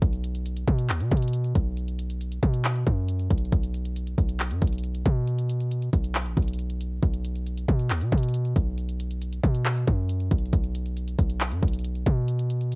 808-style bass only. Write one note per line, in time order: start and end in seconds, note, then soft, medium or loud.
0.02 0.65 B1 loud
0.68 0.91 B2 loud
0.90 1.02 D#2 loud
1.00 1.11 B2 loud
1.11 1.53 B2 loud
1.55 2.39 B1 loud
2.43 2.85 B2 loud
2.87 3.29 F#2 loud
3.30 3.51 B1 loud
3.52 4.15 B1 loud
4.18 4.52 B1 loud
4.51 4.61 F#2 loud
4.62 5.04 B1 loud
5.06 5.90 B2 loud
5.93 6.28 B1 loud
6.26 6.36 A#1 loud
6.37 7.00 B1 loud
7.03 7.66 B1 loud
7.68 7.92 B2 loud
7.90 8.03 D#2 loud
8.01 8.12 B2 loud
8.12 8.54 B2 loud
8.56 9.40 B1 loud
9.43 9.86 B2 loud
9.87 10.29 F#2 loud
10.31 10.52 B1 loud
10.53 11.16 B1 loud
11.19 11.53 B1 loud
11.52 11.62 F#2 loud
11.63 12.05 B1 loud
12.06 12.75 B2 loud